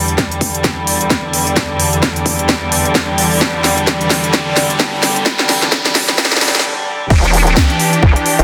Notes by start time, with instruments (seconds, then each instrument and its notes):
Already playing: string section E2 D3 G3, riser
0.08 closed hi-hat
0.18 kick, snare, closed hi-hat
0.32 closed hi-hat
0.41 kick, open hi-hat
0.55 closed hi-hat
0.64 kick, snare, closed hi-hat
0.87 open hi-hat
1.01 closed hi-hat
1.10 kick, snare, closed hi-hat
1.33 open hi-hat
1.47 closed hi-hat
1.56 kick, snare, closed hi-hat
1.80 open hi-hat
1.93 closed hi-hat
2.03 kick, snare, closed hi-hat
2.16 closed hi-hat
2.26 kick, open hi-hat
2.39 closed hi-hat
2.49 kick, snare, closed hi-hat
2.72 open hi-hat
2.85 closed hi-hat
2.95 kick, snare, closed hi-hat
3.18 open hi-hat
3.32 open hi-hat
3.41 kick, snare, closed hi-hat
3.64 snare, open hi-hat
3.78 closed hi-hat
3.87 kick, snare, closed hi-hat
4.01 closed hi-hat
4.10 kick, snare, open hi-hat
4.24 closed hi-hat
4.33 kick, snare, closed hi-hat
4.57 snare, open hi-hat
4.70 closed hi-hat
4.80 kick, snare, closed hi-hat
5.03 snare, open hi-hat
5.16 closed hi-hat
5.26 kick, snare, closed hi-hat
5.39 snare
5.49 snare, open hi-hat
5.62 snare, closed hi-hat
5.72 kick, snare, closed hi-hat
5.85 snare, closed hi-hat
5.95 kick, snare, open hi-hat
6.09 snare, closed hi-hat
6.18 kick, snare, closed hi-hat
6.25 snare
6.32 snare
6.37 snare
6.41 snare, open hi-hat
6.48 snare
6.55 snare, closed hi-hat
6.59 snare
7.10 wobble bass E1, string section E3 D4 G4, kick, downlifter
7.24 closed hi-hat
7.33 open hi-hat
7.47 closed hi-hat
7.57 kick, snare
7.70 closed hi-hat
7.80 open hi-hat
7.93 closed hi-hat
8.03 wobble bass G1, kick
8.16 closed hi-hat
8.26 open hi-hat
8.39 wobble bass E1, closed hi-hat